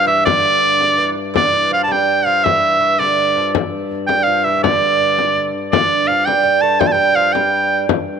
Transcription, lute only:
0, 0, Header, 1, 2, 480
1, 0, Start_track
1, 0, Tempo, 363416
1, 328, Time_signature, 6, 3, 24, 8
1, 10827, End_track
2, 0, Start_track
2, 0, Title_t, "Lute"
2, 0, Program_c, 0, 24
2, 85, Note_on_c, 0, 52, 77
2, 327, Note_off_c, 0, 52, 0
2, 333, Note_on_c, 0, 50, 72
2, 1286, Note_off_c, 0, 50, 0
2, 1291, Note_on_c, 0, 52, 63
2, 1518, Note_off_c, 0, 52, 0
2, 1765, Note_on_c, 0, 50, 71
2, 2009, Note_off_c, 0, 50, 0
2, 2015, Note_on_c, 0, 52, 62
2, 2258, Note_on_c, 0, 53, 70
2, 2267, Note_off_c, 0, 52, 0
2, 2475, Note_off_c, 0, 53, 0
2, 2480, Note_on_c, 0, 55, 76
2, 2983, Note_off_c, 0, 55, 0
2, 2988, Note_on_c, 0, 53, 66
2, 3231, Note_on_c, 0, 52, 65
2, 3236, Note_off_c, 0, 53, 0
2, 3684, Note_off_c, 0, 52, 0
2, 3700, Note_on_c, 0, 52, 63
2, 3946, Note_off_c, 0, 52, 0
2, 3951, Note_on_c, 0, 50, 61
2, 4436, Note_on_c, 0, 53, 61
2, 4447, Note_off_c, 0, 50, 0
2, 4658, Note_off_c, 0, 53, 0
2, 5400, Note_on_c, 0, 55, 62
2, 5633, Note_off_c, 0, 55, 0
2, 5638, Note_on_c, 0, 53, 61
2, 5883, Note_off_c, 0, 53, 0
2, 5886, Note_on_c, 0, 52, 63
2, 6019, Note_off_c, 0, 52, 0
2, 6035, Note_on_c, 0, 52, 51
2, 6118, Note_off_c, 0, 52, 0
2, 6135, Note_on_c, 0, 50, 69
2, 7269, Note_off_c, 0, 50, 0
2, 7574, Note_on_c, 0, 50, 68
2, 8041, Note_on_c, 0, 53, 68
2, 8054, Note_off_c, 0, 50, 0
2, 8279, Note_off_c, 0, 53, 0
2, 8284, Note_on_c, 0, 55, 80
2, 8482, Note_off_c, 0, 55, 0
2, 8498, Note_on_c, 0, 55, 71
2, 8747, Note_off_c, 0, 55, 0
2, 8758, Note_on_c, 0, 57, 77
2, 8980, Note_on_c, 0, 55, 76
2, 8996, Note_off_c, 0, 57, 0
2, 9155, Note_off_c, 0, 55, 0
2, 9171, Note_on_c, 0, 55, 72
2, 9392, Note_off_c, 0, 55, 0
2, 9407, Note_on_c, 0, 55, 54
2, 9457, Note_off_c, 0, 55, 0
2, 9462, Note_on_c, 0, 53, 70
2, 9705, Note_off_c, 0, 53, 0
2, 9716, Note_on_c, 0, 55, 67
2, 10370, Note_off_c, 0, 55, 0
2, 10827, End_track
0, 0, End_of_file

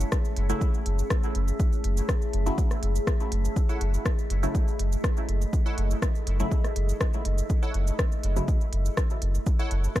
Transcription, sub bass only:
0, 0, Header, 1, 2, 480
1, 0, Start_track
1, 0, Tempo, 491803
1, 1558, Time_signature, 4, 2, 24, 8
1, 9760, End_track
2, 0, Start_track
2, 0, Title_t, "Sub bass"
2, 0, Program_c, 0, 38
2, 357, Note_on_c, 0, 30, 105
2, 517, Note_off_c, 0, 30, 0
2, 838, Note_on_c, 0, 30, 98
2, 997, Note_off_c, 0, 30, 0
2, 1318, Note_on_c, 0, 30, 86
2, 1477, Note_off_c, 0, 30, 0
2, 1798, Note_on_c, 0, 30, 101
2, 1957, Note_off_c, 0, 30, 0
2, 2278, Note_on_c, 0, 30, 104
2, 2437, Note_off_c, 0, 30, 0
2, 2757, Note_on_c, 0, 30, 102
2, 2916, Note_off_c, 0, 30, 0
2, 3237, Note_on_c, 0, 30, 86
2, 3396, Note_off_c, 0, 30, 0
2, 3717, Note_on_c, 0, 30, 102
2, 3876, Note_off_c, 0, 30, 0
2, 4196, Note_on_c, 0, 30, 100
2, 4356, Note_off_c, 0, 30, 0
2, 4676, Note_on_c, 0, 30, 98
2, 4836, Note_off_c, 0, 30, 0
2, 5156, Note_on_c, 0, 30, 86
2, 5316, Note_off_c, 0, 30, 0
2, 5638, Note_on_c, 0, 30, 101
2, 5797, Note_off_c, 0, 30, 0
2, 6117, Note_on_c, 0, 30, 102
2, 6276, Note_off_c, 0, 30, 0
2, 6597, Note_on_c, 0, 30, 101
2, 6756, Note_off_c, 0, 30, 0
2, 7077, Note_on_c, 0, 30, 85
2, 7236, Note_off_c, 0, 30, 0
2, 7557, Note_on_c, 0, 30, 103
2, 7716, Note_off_c, 0, 30, 0
2, 8038, Note_on_c, 0, 30, 101
2, 8197, Note_off_c, 0, 30, 0
2, 8518, Note_on_c, 0, 30, 98
2, 8677, Note_off_c, 0, 30, 0
2, 8998, Note_on_c, 0, 30, 88
2, 9157, Note_off_c, 0, 30, 0
2, 9479, Note_on_c, 0, 30, 101
2, 9637, Note_off_c, 0, 30, 0
2, 9760, End_track
0, 0, End_of_file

